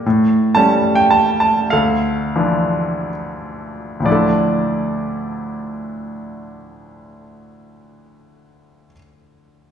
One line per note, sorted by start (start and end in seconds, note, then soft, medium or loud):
0.06 1.69 A2 soft
0.55 1.68 G3 soft
0.55 1.68 A3 soft
0.55 1.69 C#4 soft
0.55 0.93 A5 medium
0.95 1.11 G5 medium
1.10 1.39 A5 medium
1.40 1.69 A5 medium
1.70 3.98 D2 soft
1.70 3.11 A4 soft
1.70 3.10 F5 medium
2.36 4.02 E3 soft
2.36 4.02 F3 soft
2.36 4.02 D4 soft
4.00 8.86 D2 soft
4.00 8.88 A2 soft
4.05 8.90 F3 soft
4.05 8.93 D4 soft
4.05 8.91 D5 soft
4.10 8.95 E4 soft
4.10 8.97 A4 soft